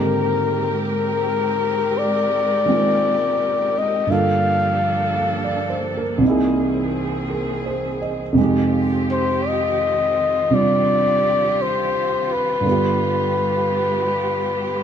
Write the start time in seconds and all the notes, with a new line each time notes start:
Already playing: G#2 D3 D#3 G#3 A#3 C4 G4 A#4
0.88 A#4
1.98 D5
2.65 D#3 G#3 A#3 C4
2.70 F4
3.78 D#5
4.07 G2 D3 A#3 D4 A4
4.11 F3 F4 A4 F5
5.16 F5
5.44 D5
5.70 C5
5.97 A#4
6.18 C2 C3 E3 C4 G#4
6.23 A#3 D#4
6.28 E4 G#4
7.30 A#4
7.66 C5
8.02 D#5
8.32 F2 C3 D#3 F4 G4
8.37 G#3 C4 D#4
8.43 G4
9.12 C5
9.48 D#5
10.50 C3 G3 D4 F4 G4 D5
11.62 C5
12.33 B4
12.61 G2 D3
12.66 D3 G3 B3 F4 G4
12.72 G4